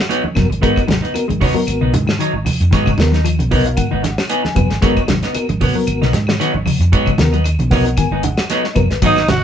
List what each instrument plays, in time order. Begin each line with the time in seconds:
0.09 clean electric guitar F#3 B3 D#4, closed hi-hat
0.24 muted clean electric guitar stroke, high conga
0.35 fingered electric bass F#1, clean electric guitar F#3, reed electric piano B3 F#4 A#4, muted clean electric guitar stroke, kick, snare, closed hi-hat, high conga, low conga, claves
0.50 fingered electric bass G#1, muted clean electric guitar stroke, closed hi-hat
0.61 fingered electric bass G#1, clean electric guitar G#3 B3 D#4, reed electric piano B3 F#4 A#4, muted clean electric guitar stroke, kick, closed hi-hat
0.76 kick, closed hi-hat, high conga, claves
0.88 fingered electric bass G#1, clean electric guitar F#3, muted clean electric guitar stroke, snare, closed hi-hat, high conga, low conga
1.02 clean electric guitar B3 D#4, closed hi-hat
1.14 reed electric piano B3 F#4 A#4, muted clean electric guitar stroke, muted fingered electric bass stroke, closed hi-hat, high conga, claves
1.28 fingered electric bass G#1, clean electric guitar G#3, muted clean electric guitar stroke, closed hi-hat, high conga
1.40 clean electric guitar F#3 B3 D#4, reed electric piano F#4 C#5, kick, open hi-hat, high conga, low conga
1.54 clean electric guitar F#3, reed electric piano B3 F#4 A#4, muted clean electric guitar stroke
1.67 fingered electric bass G#1, closed hi-hat, high conga, claves
1.81 fingered electric bass B1, clean electric guitar C#3 B3 D#4
1.93 fingered electric bass G#2, muted clean electric guitar stroke, closed hi-hat, high conga, low conga
2.07 clean electric guitar D#3, snare, claves
2.19 clean electric guitar D#3 F#3 D#4, closed hi-hat
2.33 fingered electric bass G#1, muted clean electric guitar stroke
2.46 muted clean electric guitar stroke, open hi-hat, high conga, low conga, claves
2.61 fingered electric bass F2, muted clean electric guitar stroke, closed hi-hat
2.71 fingered electric bass G#2, clean electric guitar D#3 F#3 B3 D#4, kick, snare, closed hi-hat
2.86 clean electric guitar C#3, kick, closed hi-hat, high conga, claves
2.97 fingered electric bass D#2, clean electric guitar D#3, reed electric piano B3 F#4 A#4, muted clean electric guitar stroke, snare, closed hi-hat, high conga, low conga
3.12 clean electric guitar F#3 D#4, muted clean electric guitar stroke, snare, closed hi-hat
3.24 clean electric guitar F3, muted clean electric guitar stroke, closed hi-hat, high conga, claves
3.39 fingered electric bass B1, muted clean electric guitar stroke, closed hi-hat, high conga
3.50 clean electric guitar F#3 B3 D#4, reed electric piano B3 F#4 A#4 D#5, kick, open hi-hat, high conga, low conga
3.66 reed electric piano F5, muted clean electric guitar stroke, closed hi-hat
3.77 fingered electric bass G#1, clean electric guitar D#3, reed electric piano F#5, kick, closed hi-hat, claves
3.91 fingered electric bass G#1, clean electric guitar D#3 B3 D#4
4.03 muted clean electric guitar stroke, snare, closed hi-hat, high conga
4.18 snare, closed hi-hat, claves
4.29 clean electric guitar B3 D#4, reed electric piano G#5, closed hi-hat
4.44 muted clean electric guitar stroke, snare, high conga
4.55 fingered electric bass F#1, clean electric guitar F#3, reed electric piano B3 F#4 B4, muted clean electric guitar stroke, kick, closed hi-hat, high conga, low conga, claves
4.70 fingered electric bass G#1, muted clean electric guitar stroke, snare, closed hi-hat
4.81 fingered electric bass G#1, clean electric guitar F#3 G#3 B3 D#4, reed electric piano B3 F#4 A#4, kick, snare, closed hi-hat
4.97 kick, closed hi-hat, high conga, claves
5.08 fingered electric bass G#1, clean electric guitar F#3, muted clean electric guitar stroke, snare, closed hi-hat, high conga, low conga
5.23 clean electric guitar B3 D#4, snare, closed hi-hat
5.34 reed electric piano B3 F#4 A#4, muted clean electric guitar stroke, muted fingered electric bass stroke, closed hi-hat, high conga, claves
5.49 fingered electric bass G#1, muted clean electric guitar stroke, closed hi-hat, high conga
5.61 clean electric guitar F#3 B3, reed electric piano F#4 A#4, kick, open hi-hat, low conga
5.73 clean electric guitar F#3, reed electric piano B3 F#4 A#4, muted clean electric guitar stroke
5.87 fingered electric bass G#1, closed hi-hat, high conga, claves
6.01 fingered electric bass B1, clean electric guitar C#3 B3 D#4, snare
6.13 fingered electric bass G#2, muted clean electric guitar stroke, snare, closed hi-hat, high conga
6.27 clean electric guitar D#3, snare, claves
6.40 clean electric guitar D#3 F#3 B3 D#4, closed hi-hat
6.54 fingered electric bass G#1, muted clean electric guitar stroke, high conga
6.66 clean electric guitar C#3, muted clean electric guitar stroke, open hi-hat, high conga, low conga, claves
6.79 fingered electric bass F2, muted clean electric guitar stroke, closed hi-hat
6.92 fingered electric bass G#2, clean electric guitar F#3 B3 D#4, muted clean electric guitar stroke, kick, closed hi-hat
7.06 clean electric guitar C#3, kick, closed hi-hat, claves
7.18 fingered electric bass D#2, clean electric guitar D#3, reed electric piano B3 F#4 A#4, muted clean electric guitar stroke, snare, closed hi-hat, high conga, low conga
7.33 clean electric guitar F#3 B3 D#4, closed hi-hat
7.44 muted clean electric guitar stroke, closed hi-hat, high conga, claves
7.59 fingered electric bass B1, muted clean electric guitar stroke, closed hi-hat, high conga
7.70 clean electric guitar F#3 B3 D#4, reed electric piano B3 F#4 A#4 F#5, kick, snare, open hi-hat, high conga, low conga
7.85 muted clean electric guitar stroke, closed hi-hat
7.97 fingered electric bass G#1, clean electric guitar D#3, reed electric piano G#5, kick, closed hi-hat, claves
8.11 fingered electric bass G#1, clean electric guitar D#3 B3 D#4
8.23 reed electric piano F#5, muted clean electric guitar stroke, closed hi-hat, high conga, low conga
8.37 snare, closed hi-hat, claves
8.50 clean electric guitar F#3 B3 D#4, reed electric piano D#5, snare, closed hi-hat
8.64 muted clean electric guitar stroke, snare
8.75 fingered electric bass F#1, clean electric guitar F#3, reed electric piano B3 F#4 A#4 B4, muted clean electric guitar stroke, kick, closed hi-hat, high conga, low conga, claves
8.90 fingered electric bass G#1, muted clean electric guitar stroke, snare, closed hi-hat
9.02 fingered electric bass G#1, clean electric guitar F#3 B3 D#4, alto saxophone D#4, tenor saxophone D#4, kick, closed hi-hat
9.16 snare, claves
9.28 fingered electric bass G#1, clean electric guitar D#3, tenor saxophone F#4, muted clean electric guitar stroke, snare, closed hi-hat, high conga, low conga
9.32 alto saxophone F#4